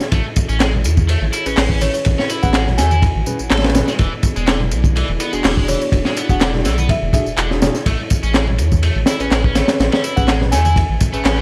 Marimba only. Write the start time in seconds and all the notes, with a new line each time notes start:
1.82 C#5
1.94 C#5
2.43 F#5
2.54 F#5
2.78 G#5
2.90 G#5
5.68 C#5
5.82 C#5
6.30 F#5
6.90 E5
7.14 E5
9.56 C#5
9.68 C#5
10.16 F#5
10.28 F#5
10.52 G#5
10.65 G#5